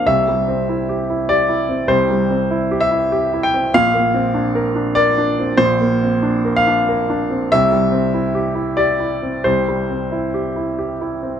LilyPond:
\new Staff \with { instrumentName = "Grand piano" } { \time 3/4 \key c \mixolydian \tempo 4 = 96 << { e''2 d''4 | c''4. e''4 g''8 | f''2 d''4 | c''4. f''4 r8 |
e''2 d''4 | c''2~ c''8 r8 | } \\ { \tuplet 3/2 { <c, c>8 g8 c'8 e'8 g'8 e'8 g'8 e'8 c'8 } | \tuplet 3/2 { <c, c>8 g8 c'8 e'8 g'8 e'8 g'8 e'8 c'8 } | \tuplet 3/2 { <bes,, bes,>8 bes8 c'8 d'8 bes'8 d'8 bes'8 d'8 c'8 } | \tuplet 3/2 { <bes,, bes,>8 bes8 c'8 d'8 bes'8 d'8 bes'8 d'8 c'8 } |
\tuplet 3/2 { <c, c>8 g8 c'8 e'8 g'8 e'8 g'8 e'8 c'8 } | \tuplet 3/2 { <c, c>8 g8 c'8 e'8 g'8 e'8 g'8 e'8 c'8 } | } >> }